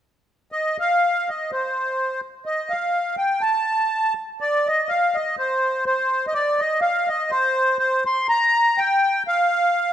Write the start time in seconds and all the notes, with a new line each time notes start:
0.52 D#5
0.80 F5
1.29 D#5
1.52 C5
2.46 D#5
2.70 F5
3.18 G5
3.41 A5
4.41 D5
4.67 D#5
4.89 F5
5.14 D#5
5.39 C5
5.86 C5
6.28 D#5
6.34 D5
6.59 D#5
6.81 F5
7.08 D#5
7.31 C5
7.79 C5
8.06 C6
8.29 A#5
8.78 G5
9.28 F5